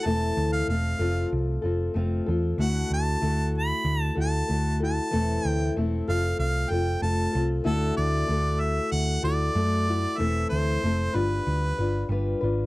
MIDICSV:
0, 0, Header, 1, 4, 480
1, 0, Start_track
1, 0, Tempo, 633580
1, 44, Time_signature, 4, 2, 24, 8
1, 9591, End_track
2, 0, Start_track
2, 0, Title_t, "Harmonica"
2, 0, Program_c, 0, 22
2, 43, Note_on_c, 0, 81, 89
2, 395, Note_off_c, 0, 81, 0
2, 399, Note_on_c, 0, 77, 84
2, 513, Note_off_c, 0, 77, 0
2, 525, Note_on_c, 0, 77, 70
2, 973, Note_off_c, 0, 77, 0
2, 1976, Note_on_c, 0, 78, 73
2, 2192, Note_off_c, 0, 78, 0
2, 2227, Note_on_c, 0, 81, 86
2, 2664, Note_off_c, 0, 81, 0
2, 2713, Note_on_c, 0, 83, 96
2, 3047, Note_off_c, 0, 83, 0
2, 3047, Note_on_c, 0, 81, 96
2, 3147, Note_off_c, 0, 81, 0
2, 3192, Note_on_c, 0, 81, 81
2, 3626, Note_off_c, 0, 81, 0
2, 3672, Note_on_c, 0, 81, 88
2, 4150, Note_off_c, 0, 81, 0
2, 4150, Note_on_c, 0, 79, 88
2, 4347, Note_off_c, 0, 79, 0
2, 4615, Note_on_c, 0, 77, 88
2, 4833, Note_off_c, 0, 77, 0
2, 4844, Note_on_c, 0, 77, 86
2, 5079, Note_on_c, 0, 79, 77
2, 5090, Note_off_c, 0, 77, 0
2, 5316, Note_off_c, 0, 79, 0
2, 5321, Note_on_c, 0, 81, 90
2, 5657, Note_off_c, 0, 81, 0
2, 5802, Note_on_c, 0, 69, 88
2, 6027, Note_off_c, 0, 69, 0
2, 6040, Note_on_c, 0, 74, 87
2, 6519, Note_on_c, 0, 76, 80
2, 6530, Note_off_c, 0, 74, 0
2, 6752, Note_off_c, 0, 76, 0
2, 6757, Note_on_c, 0, 78, 91
2, 6984, Note_off_c, 0, 78, 0
2, 7004, Note_on_c, 0, 74, 89
2, 7717, Note_on_c, 0, 76, 89
2, 7729, Note_off_c, 0, 74, 0
2, 7945, Note_off_c, 0, 76, 0
2, 7950, Note_on_c, 0, 72, 85
2, 8446, Note_on_c, 0, 71, 73
2, 8458, Note_off_c, 0, 72, 0
2, 9164, Note_off_c, 0, 71, 0
2, 9591, End_track
3, 0, Start_track
3, 0, Title_t, "Steel-string acoustic guitar"
3, 0, Program_c, 1, 25
3, 34, Note_on_c, 1, 52, 70
3, 38, Note_on_c, 1, 57, 70
3, 44, Note_on_c, 1, 60, 71
3, 47, Note_on_c, 1, 64, 67
3, 50, Note_on_c, 1, 69, 81
3, 518, Note_off_c, 1, 52, 0
3, 518, Note_off_c, 1, 57, 0
3, 521, Note_on_c, 1, 57, 54
3, 523, Note_off_c, 1, 60, 0
3, 524, Note_off_c, 1, 64, 0
3, 533, Note_on_c, 1, 60, 55
3, 544, Note_off_c, 1, 69, 0
3, 547, Note_on_c, 1, 69, 58
3, 742, Note_off_c, 1, 69, 0
3, 751, Note_on_c, 1, 69, 56
3, 756, Note_off_c, 1, 57, 0
3, 757, Note_off_c, 1, 60, 0
3, 759, Note_on_c, 1, 65, 55
3, 765, Note_on_c, 1, 57, 46
3, 766, Note_on_c, 1, 60, 50
3, 767, Note_on_c, 1, 53, 44
3, 1223, Note_off_c, 1, 69, 0
3, 1226, Note_on_c, 1, 69, 49
3, 1230, Note_off_c, 1, 65, 0
3, 1239, Note_on_c, 1, 65, 45
3, 1244, Note_off_c, 1, 53, 0
3, 1244, Note_off_c, 1, 60, 0
3, 1251, Note_on_c, 1, 60, 45
3, 1467, Note_off_c, 1, 57, 0
3, 1470, Note_on_c, 1, 57, 60
3, 1474, Note_off_c, 1, 69, 0
3, 1475, Note_off_c, 1, 60, 0
3, 1481, Note_off_c, 1, 65, 0
3, 1484, Note_on_c, 1, 60, 61
3, 1489, Note_on_c, 1, 65, 68
3, 1500, Note_on_c, 1, 69, 65
3, 1705, Note_off_c, 1, 69, 0
3, 1714, Note_on_c, 1, 69, 57
3, 1716, Note_off_c, 1, 57, 0
3, 1723, Note_off_c, 1, 60, 0
3, 1723, Note_off_c, 1, 65, 0
3, 1732, Note_on_c, 1, 65, 49
3, 1737, Note_on_c, 1, 60, 49
3, 1958, Note_off_c, 1, 69, 0
3, 1958, Note_on_c, 1, 50, 63
3, 1964, Note_on_c, 1, 57, 69
3, 1965, Note_off_c, 1, 60, 0
3, 1967, Note_off_c, 1, 65, 0
3, 1968, Note_on_c, 1, 64, 71
3, 1972, Note_on_c, 1, 69, 70
3, 1973, Note_on_c, 1, 66, 79
3, 2427, Note_off_c, 1, 64, 0
3, 2429, Note_off_c, 1, 57, 0
3, 2432, Note_on_c, 1, 57, 51
3, 2436, Note_on_c, 1, 64, 51
3, 2438, Note_off_c, 1, 66, 0
3, 2440, Note_off_c, 1, 50, 0
3, 2448, Note_on_c, 1, 66, 59
3, 2450, Note_off_c, 1, 69, 0
3, 2453, Note_on_c, 1, 69, 65
3, 3144, Note_off_c, 1, 69, 0
3, 3147, Note_on_c, 1, 69, 54
3, 3150, Note_off_c, 1, 66, 0
3, 3155, Note_off_c, 1, 64, 0
3, 3159, Note_on_c, 1, 66, 42
3, 3165, Note_on_c, 1, 64, 42
3, 3394, Note_off_c, 1, 69, 0
3, 3395, Note_off_c, 1, 57, 0
3, 3398, Note_on_c, 1, 57, 50
3, 3399, Note_off_c, 1, 64, 0
3, 3400, Note_off_c, 1, 66, 0
3, 3408, Note_on_c, 1, 64, 55
3, 3412, Note_on_c, 1, 66, 60
3, 3424, Note_on_c, 1, 69, 63
3, 3629, Note_off_c, 1, 69, 0
3, 3638, Note_on_c, 1, 69, 44
3, 3640, Note_off_c, 1, 57, 0
3, 3645, Note_off_c, 1, 64, 0
3, 3647, Note_off_c, 1, 66, 0
3, 3655, Note_on_c, 1, 66, 47
3, 3658, Note_on_c, 1, 64, 42
3, 3869, Note_on_c, 1, 52, 76
3, 3877, Note_off_c, 1, 64, 0
3, 3877, Note_off_c, 1, 69, 0
3, 3880, Note_on_c, 1, 57, 67
3, 3882, Note_on_c, 1, 60, 73
3, 3883, Note_off_c, 1, 66, 0
3, 3886, Note_on_c, 1, 64, 79
3, 3886, Note_on_c, 1, 69, 79
3, 4356, Note_off_c, 1, 52, 0
3, 4362, Note_off_c, 1, 60, 0
3, 4364, Note_off_c, 1, 64, 0
3, 4365, Note_off_c, 1, 57, 0
3, 4368, Note_on_c, 1, 57, 64
3, 4377, Note_on_c, 1, 60, 63
3, 4381, Note_on_c, 1, 64, 62
3, 4391, Note_off_c, 1, 69, 0
3, 4394, Note_on_c, 1, 69, 69
3, 4598, Note_off_c, 1, 69, 0
3, 4605, Note_off_c, 1, 57, 0
3, 4607, Note_on_c, 1, 69, 57
3, 4610, Note_off_c, 1, 60, 0
3, 4611, Note_off_c, 1, 64, 0
3, 4614, Note_on_c, 1, 65, 55
3, 4619, Note_on_c, 1, 60, 48
3, 4622, Note_on_c, 1, 57, 49
3, 4623, Note_on_c, 1, 53, 45
3, 5076, Note_off_c, 1, 69, 0
3, 5079, Note_on_c, 1, 69, 50
3, 5086, Note_off_c, 1, 65, 0
3, 5091, Note_off_c, 1, 60, 0
3, 5093, Note_off_c, 1, 53, 0
3, 5095, Note_on_c, 1, 65, 45
3, 5105, Note_on_c, 1, 60, 38
3, 5309, Note_off_c, 1, 57, 0
3, 5312, Note_on_c, 1, 57, 55
3, 5313, Note_off_c, 1, 60, 0
3, 5319, Note_off_c, 1, 65, 0
3, 5321, Note_off_c, 1, 69, 0
3, 5322, Note_on_c, 1, 60, 62
3, 5328, Note_on_c, 1, 65, 61
3, 5333, Note_on_c, 1, 69, 62
3, 5547, Note_off_c, 1, 69, 0
3, 5556, Note_on_c, 1, 69, 52
3, 5558, Note_off_c, 1, 57, 0
3, 5560, Note_off_c, 1, 65, 0
3, 5563, Note_off_c, 1, 60, 0
3, 5569, Note_on_c, 1, 65, 46
3, 5577, Note_on_c, 1, 60, 38
3, 5788, Note_on_c, 1, 50, 71
3, 5790, Note_off_c, 1, 60, 0
3, 5793, Note_on_c, 1, 64, 84
3, 5794, Note_off_c, 1, 69, 0
3, 5795, Note_on_c, 1, 57, 72
3, 5798, Note_off_c, 1, 65, 0
3, 5801, Note_on_c, 1, 66, 83
3, 5803, Note_on_c, 1, 69, 86
3, 6261, Note_off_c, 1, 57, 0
3, 6270, Note_on_c, 1, 57, 59
3, 6276, Note_off_c, 1, 50, 0
3, 6278, Note_off_c, 1, 64, 0
3, 6283, Note_off_c, 1, 66, 0
3, 6284, Note_off_c, 1, 69, 0
3, 6287, Note_on_c, 1, 64, 65
3, 6294, Note_on_c, 1, 66, 60
3, 6297, Note_on_c, 1, 69, 64
3, 6981, Note_off_c, 1, 69, 0
3, 6985, Note_off_c, 1, 66, 0
3, 6990, Note_on_c, 1, 69, 53
3, 6994, Note_on_c, 1, 66, 44
3, 6998, Note_off_c, 1, 57, 0
3, 6999, Note_off_c, 1, 64, 0
3, 7008, Note_on_c, 1, 64, 44
3, 7232, Note_off_c, 1, 64, 0
3, 7234, Note_on_c, 1, 57, 57
3, 7238, Note_off_c, 1, 66, 0
3, 7238, Note_off_c, 1, 69, 0
3, 7241, Note_on_c, 1, 64, 55
3, 7247, Note_on_c, 1, 66, 63
3, 7258, Note_on_c, 1, 69, 63
3, 7471, Note_off_c, 1, 69, 0
3, 7480, Note_off_c, 1, 57, 0
3, 7480, Note_on_c, 1, 69, 51
3, 7483, Note_off_c, 1, 64, 0
3, 7483, Note_off_c, 1, 66, 0
3, 7492, Note_on_c, 1, 66, 44
3, 7495, Note_on_c, 1, 64, 41
3, 7710, Note_on_c, 1, 52, 71
3, 7711, Note_on_c, 1, 57, 70
3, 7714, Note_off_c, 1, 64, 0
3, 7718, Note_off_c, 1, 69, 0
3, 7720, Note_off_c, 1, 66, 0
3, 7721, Note_on_c, 1, 60, 75
3, 7723, Note_on_c, 1, 64, 78
3, 7727, Note_on_c, 1, 69, 80
3, 8198, Note_off_c, 1, 52, 0
3, 8198, Note_off_c, 1, 57, 0
3, 8198, Note_off_c, 1, 60, 0
3, 8204, Note_off_c, 1, 64, 0
3, 8206, Note_off_c, 1, 69, 0
3, 8207, Note_on_c, 1, 60, 58
3, 8209, Note_on_c, 1, 57, 57
3, 8218, Note_on_c, 1, 64, 58
3, 8225, Note_on_c, 1, 69, 60
3, 8433, Note_off_c, 1, 69, 0
3, 8436, Note_on_c, 1, 71, 57
3, 8440, Note_off_c, 1, 64, 0
3, 8443, Note_off_c, 1, 60, 0
3, 8443, Note_on_c, 1, 65, 56
3, 8446, Note_on_c, 1, 62, 49
3, 8447, Note_off_c, 1, 57, 0
3, 8456, Note_on_c, 1, 55, 50
3, 8918, Note_off_c, 1, 71, 0
3, 8923, Note_off_c, 1, 65, 0
3, 8924, Note_off_c, 1, 62, 0
3, 8927, Note_on_c, 1, 71, 45
3, 8930, Note_off_c, 1, 55, 0
3, 8939, Note_on_c, 1, 65, 44
3, 8950, Note_on_c, 1, 62, 43
3, 9155, Note_off_c, 1, 62, 0
3, 9157, Note_on_c, 1, 55, 59
3, 9164, Note_on_c, 1, 62, 60
3, 9165, Note_off_c, 1, 71, 0
3, 9168, Note_off_c, 1, 65, 0
3, 9177, Note_on_c, 1, 65, 68
3, 9180, Note_on_c, 1, 71, 72
3, 9390, Note_off_c, 1, 71, 0
3, 9399, Note_off_c, 1, 55, 0
3, 9399, Note_on_c, 1, 71, 56
3, 9403, Note_off_c, 1, 62, 0
3, 9409, Note_off_c, 1, 65, 0
3, 9418, Note_on_c, 1, 65, 49
3, 9424, Note_on_c, 1, 62, 45
3, 9591, Note_off_c, 1, 62, 0
3, 9591, Note_off_c, 1, 65, 0
3, 9591, Note_off_c, 1, 71, 0
3, 9591, End_track
4, 0, Start_track
4, 0, Title_t, "Picked electric bass"
4, 0, Program_c, 2, 34
4, 45, Note_on_c, 2, 28, 82
4, 231, Note_off_c, 2, 28, 0
4, 280, Note_on_c, 2, 38, 78
4, 468, Note_off_c, 2, 38, 0
4, 516, Note_on_c, 2, 28, 84
4, 705, Note_off_c, 2, 28, 0
4, 752, Note_on_c, 2, 29, 75
4, 942, Note_off_c, 2, 29, 0
4, 1004, Note_on_c, 2, 36, 77
4, 1190, Note_off_c, 2, 36, 0
4, 1239, Note_on_c, 2, 29, 74
4, 1426, Note_off_c, 2, 29, 0
4, 1480, Note_on_c, 2, 29, 74
4, 1667, Note_off_c, 2, 29, 0
4, 1728, Note_on_c, 2, 40, 76
4, 1912, Note_off_c, 2, 40, 0
4, 1954, Note_on_c, 2, 38, 83
4, 2143, Note_off_c, 2, 38, 0
4, 2200, Note_on_c, 2, 38, 73
4, 2387, Note_off_c, 2, 38, 0
4, 2442, Note_on_c, 2, 38, 70
4, 2815, Note_off_c, 2, 38, 0
4, 2914, Note_on_c, 2, 38, 87
4, 3103, Note_off_c, 2, 38, 0
4, 3158, Note_on_c, 2, 38, 73
4, 3346, Note_off_c, 2, 38, 0
4, 3406, Note_on_c, 2, 38, 69
4, 3777, Note_off_c, 2, 38, 0
4, 3892, Note_on_c, 2, 28, 79
4, 4075, Note_off_c, 2, 28, 0
4, 4129, Note_on_c, 2, 38, 77
4, 4313, Note_off_c, 2, 38, 0
4, 4370, Note_on_c, 2, 28, 78
4, 4554, Note_off_c, 2, 28, 0
4, 4609, Note_on_c, 2, 29, 78
4, 4793, Note_off_c, 2, 29, 0
4, 4843, Note_on_c, 2, 36, 86
4, 5030, Note_off_c, 2, 36, 0
4, 5079, Note_on_c, 2, 29, 76
4, 5267, Note_off_c, 2, 29, 0
4, 5318, Note_on_c, 2, 29, 79
4, 5507, Note_off_c, 2, 29, 0
4, 5568, Note_on_c, 2, 36, 81
4, 5753, Note_off_c, 2, 36, 0
4, 5801, Note_on_c, 2, 38, 87
4, 5989, Note_off_c, 2, 38, 0
4, 6044, Note_on_c, 2, 38, 85
4, 6231, Note_off_c, 2, 38, 0
4, 6281, Note_on_c, 2, 38, 76
4, 6655, Note_off_c, 2, 38, 0
4, 6760, Note_on_c, 2, 38, 79
4, 6948, Note_off_c, 2, 38, 0
4, 6995, Note_on_c, 2, 38, 79
4, 7185, Note_off_c, 2, 38, 0
4, 7237, Note_on_c, 2, 42, 77
4, 7613, Note_off_c, 2, 42, 0
4, 7726, Note_on_c, 2, 28, 87
4, 7912, Note_off_c, 2, 28, 0
4, 7969, Note_on_c, 2, 38, 78
4, 8154, Note_off_c, 2, 38, 0
4, 8207, Note_on_c, 2, 29, 80
4, 8393, Note_off_c, 2, 29, 0
4, 8447, Note_on_c, 2, 31, 79
4, 8632, Note_off_c, 2, 31, 0
4, 8689, Note_on_c, 2, 38, 79
4, 8873, Note_off_c, 2, 38, 0
4, 8929, Note_on_c, 2, 31, 71
4, 9113, Note_off_c, 2, 31, 0
4, 9158, Note_on_c, 2, 31, 77
4, 9346, Note_off_c, 2, 31, 0
4, 9413, Note_on_c, 2, 32, 80
4, 9591, Note_off_c, 2, 32, 0
4, 9591, End_track
0, 0, End_of_file